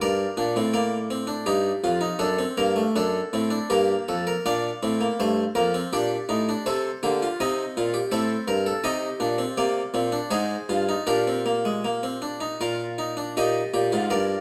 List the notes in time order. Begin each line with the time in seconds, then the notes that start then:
0.01 G2 A#4 D5
0.37 A#2 D4
0.56 A2 C4
0.74 A#3 D5
1.11 C4
1.27 D4
1.46 G2 D#4 G4
1.84 F2 F4
2.01 D#4
2.19 F#2 D4 A4
2.39 C4
2.58 G2 A#3 A#4
2.76 A3
2.96 F#2 D4 A4
3.33 A2 C4
3.50 D4
3.70 G2 A#3 G4 A#4
4.08 F2 A4
4.27 A#4
4.46 A#2 D4 D5 F5
4.83 A2 C4
5.01 A#3
5.20 G2 A3 C5
5.55 F2 A#3 A#4
5.74 C4
5.93 A#2 D4 G4 D5
6.29 A2 D#4
6.49 D4
6.66 C3 C4 A4 C5
7.03 D3 A#3 G4
7.22 F4
7.40 C3 C4 D#4 D#5
7.77 A#2 F4
7.94 G4
8.12 A2 C4 A4 C5
8.48 G2 A#4
8.66 A4
8.84 C3 D#4 G4 D#5
9.20 A#2 D4
9.38 C4
9.57 C3 A#3 D5
9.94 A#2 C4
10.12 D4
10.31 G#2 D#4 G#4 C5
10.69 G2 F4
10.89 D#4
11.07 A#2 D4 G4 A#4
11.27 C4
11.46 A#3
11.65 G#3
11.85 A#3
12.03 C4
12.22 D4
12.40 D#4
12.61 A#2 F4 A#4
12.98 D#4
13.17 D4
13.37 A#2 D#4 G4 D#5
13.74 A#2 G4
13.92 G#2 F4
14.10 G2 A#4 D5